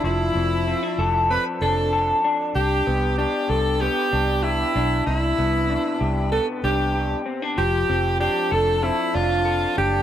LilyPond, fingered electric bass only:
\new Staff \with { instrumentName = "Fingered electric bass" } { \clef bass \time 4/4 \key c \major \tempo 4 = 96 f,,8 f,,8. r16 f,,8. r16 f,,4 r8 | c,8 c,8. r16 c,8. r16 c,4 b,,8 | c,8 c,8. r16 c,8. r16 c,4 r8 | f,,8 f,,8. r16 f,,8. r16 f,,4 fis,,8 | }